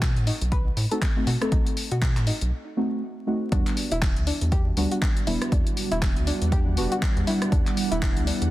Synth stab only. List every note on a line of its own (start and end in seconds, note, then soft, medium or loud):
0.00 0.88 A3 medium
0.00 0.88 C4 medium
0.00 0.88 D#4 medium
0.00 0.88 A4 loud
0.91 1.05 A3 medium
0.91 1.05 C4 medium
0.91 1.05 D#4 medium
0.91 1.05 F#4 loud
1.16 1.30 A3 medium
1.16 1.30 C4 medium
1.16 1.30 D#4 medium
1.16 1.30 F#4 loud
1.41 2.75 A3 medium
1.41 2.76 C4 medium
1.41 2.76 D#4 medium
1.41 2.88 A4 loud
2.77 3.01 A3 medium
2.77 3.02 C4 medium
2.77 3.02 D#4 medium
2.77 3.02 F#4 loud
3.27 3.51 A3 medium
3.27 3.51 C4 medium
3.27 3.51 D#4 medium
3.27 3.51 F#4 medium
3.51 4.27 G3 loud
3.51 4.27 B3 medium
3.51 4.27 D4 medium
3.51 4.27 F#4 loud
4.77 5.01 G3 loud
4.77 5.02 B3 medium
4.77 5.02 D4 medium
4.77 5.02 F#4 loud
5.27 5.51 G3 medium
5.27 5.52 B3 medium
5.27 5.52 D4 medium
5.27 5.52 E4 medium
6.77 7.01 G3 medium
6.77 7.02 B3 medium
6.77 7.02 D4 medium
6.77 7.02 F#4 loud
7.27 7.52 G3 medium
7.27 7.52 B3 medium
7.27 7.52 D4 medium
7.27 7.52 E4 medium